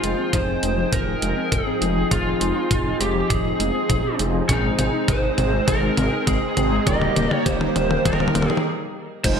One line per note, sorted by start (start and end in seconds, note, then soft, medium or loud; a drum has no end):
0.00 0.15 F1 medium
0.00 4.45 F3 medium
0.00 0.16 G#3 medium
0.00 6.83 C4 medium
0.00 1.78 D#4 medium
0.00 8.61 D#4 medium
0.00 0.35 F4 loud
0.00 1.78 F4 medium
0.00 1.78 G#4 loud
0.00 4.45 G#4 medium
0.00 4.45 G5 medium
0.00 closed hi-hat medium
0.18 0.31 C4 medium
0.33 0.56 F1 medium
0.33 0.46 D#4 medium
0.33 0.92 C5 loud
0.33 kick loud
0.33 closed hi-hat loud
0.33 mid tom soft
0.48 0.56 C4 medium
0.63 0.85 F1 loud
0.63 0.75 G#3 medium
0.63 closed hi-hat medium
0.78 0.90 F3 loud
0.92 1.15 F1 medium
0.92 1.05 D#3 medium
0.92 1.54 A#4 loud
0.92 kick medium
0.92 closed hi-hat medium
0.92 mid tom medium
1.07 1.20 F3 medium
1.22 1.33 F1 loud
1.22 1.35 G#3 medium
1.22 closed hi-hat medium
1.37 1.51 C4 medium
1.52 1.63 F1 medium
1.52 1.59 D#4 medium
1.52 2.07 G#4 medium
1.52 kick medium
1.52 closed hi-hat medium
1.52 mid tom medium
1.67 1.79 C4 medium
1.82 2.04 F1 medium
1.82 1.94 G#3 medium
1.82 2.08 D#4 medium
1.82 2.08 F4 medium
1.82 closed hi-hat medium
1.97 2.09 F3 medium
2.11 2.34 F1 loud
2.11 2.25 D#3 medium
2.11 4.16 D#4 medium
2.11 4.16 F4 medium
2.11 2.97 F4 medium
2.11 4.16 G#4 medium
2.11 kick loud
2.11 closed hi-hat medium
2.11 mid tom medium
2.26 2.39 F3 medium
2.41 2.52 F1 medium
2.41 2.54 G#3 medium
2.41 closed hi-hat medium
2.56 2.68 C4 medium
2.71 2.93 F1 medium
2.71 2.83 D#4 medium
2.71 kick loud
2.71 closed hi-hat medium
2.71 mid tom medium
2.86 2.93 C4 medium
3.00 3.23 F1 loud
3.00 3.13 G#3 medium
3.00 3.30 G4 medium
3.00 closed hi-hat medium
3.15 3.28 F3 loud
3.30 3.53 F1 medium
3.30 3.43 D#3 medium
3.30 4.16 G#4 medium
3.30 kick loud
3.30 closed hi-hat loud
3.30 mid tom medium
3.45 3.58 F3 medium
3.60 3.71 F1 loud
3.60 3.72 G#3 medium
3.60 closed hi-hat medium
3.75 3.89 C4 medium
3.90 4.01 F1 medium
3.90 3.97 D#4 medium
3.90 kick loud
3.90 closed hi-hat loud
3.90 mid tom medium
4.04 4.17 C4 medium
4.19 4.42 F1 loud
4.19 4.32 G#3 medium
4.19 4.45 D#4 medium
4.19 4.45 F4 medium
4.19 4.45 G#4 medium
4.19 closed hi-hat medium
4.34 4.47 F3 medium
4.49 4.71 G#1 loud
4.49 4.63 D#3 medium
4.49 6.84 G#3 medium
4.49 6.53 C4 medium
4.49 6.53 D#4 medium
4.49 5.10 D#4 medium
4.49 6.53 G#4 loud
4.49 kick loud
4.49 closed hi-hat loud
4.49 mid tom medium
4.64 4.76 G#3 medium
4.78 4.90 G#1 medium
4.78 4.91 C4 medium
4.78 closed hi-hat medium
4.78 mid tom medium
4.93 5.06 D#4 medium
5.08 5.31 G#1 medium
5.08 5.21 G#4 medium
5.08 5.67 C5 medium
5.08 kick loud
5.08 closed hi-hat medium
5.08 mid tom medium
5.23 5.31 D#4 medium
5.38 5.61 G#1 loud
5.38 5.51 C4 medium
5.38 closed hi-hat medium
5.38 mid tom medium
5.53 5.65 G#3 loud
5.68 5.90 G#1 medium
5.68 5.80 D#3 medium
5.68 6.23 A#4 loud
5.68 kick loud
5.68 closed hi-hat medium
5.68 mid tom medium
5.83 5.95 G#3 medium
5.97 6.09 G#1 loud
5.97 6.10 C4 medium
5.97 closed hi-hat medium
5.97 mid tom medium
6.12 6.26 D#4 medium
6.27 6.38 G#1 medium
6.27 6.88 G#4 loud
6.27 6.35 G#4 medium
6.27 kick loud
6.27 closed hi-hat medium
6.27 mid tom medium
6.42 6.55 D#4 medium
6.57 6.79 G#1 loud
6.57 6.83 C4 medium
6.57 6.69 C4 medium
6.57 6.83 D#4 medium
6.57 6.83 G#4 medium
6.57 closed hi-hat medium
6.57 mid tom medium
6.72 6.84 G#3 medium
6.87 7.09 D#1 loud
6.87 7.01 D#3 medium
6.87 8.63 G3 medium
6.87 8.65 A#3 medium
6.87 8.63 A#3 medium
6.87 8.65 D#4 medium
6.87 8.65 G4 loud
6.87 7.34 D#5 loud
6.87 kick loud
6.87 closed hi-hat medium
6.87 mid tom loud
7.01 7.14 G3 medium
7.01 mid tom medium
7.16 7.28 D#1 medium
7.16 7.29 A#3 medium
7.16 closed hi-hat medium
7.16 mid tom loud
7.31 7.44 D#4 medium
7.31 7.48 C#5 loud
7.31 mid tom medium
7.46 7.68 D#1 medium
7.46 7.58 G4 medium
7.46 8.02 C5 loud
7.46 kick loud
7.46 closed hi-hat medium
7.46 mid tom loud
7.61 7.68 D#4 medium
7.61 mid tom medium
7.76 7.98 D#1 loud
7.76 7.88 A#3 medium
7.76 closed hi-hat medium
7.76 mid tom loud
7.90 8.03 G3 loud
7.90 mid tom medium
8.05 8.28 D#1 medium
8.05 8.18 D#3 medium
8.05 8.49 A#4 medium
8.05 kick loud
8.05 closed hi-hat medium
8.05 mid tom loud
8.13 mid tom medium
8.20 8.33 G3 medium
8.20 mid tom medium
8.28 mid tom medium
8.35 8.46 D#1 loud
8.35 8.43 A#3 medium
8.35 closed hi-hat medium
8.35 mid tom loud
8.42 mid tom medium
8.49 8.57 D#4 medium
8.49 8.61 G#4 medium
8.49 mid tom medium
8.57 mid tom loud
9.24 9.40 F1 loud
9.24 9.38 D#3 medium
9.24 9.40 F3 medium
9.24 9.40 G#3 loud
9.24 9.40 G#3 medium
9.24 9.40 C4 medium
9.24 9.40 D#4 medium
9.24 9.40 F4 medium
9.24 9.40 C5 loud
9.24 9.40 G5 medium
9.24 kick loud
9.24 closed hi-hat medium
9.24 crash loud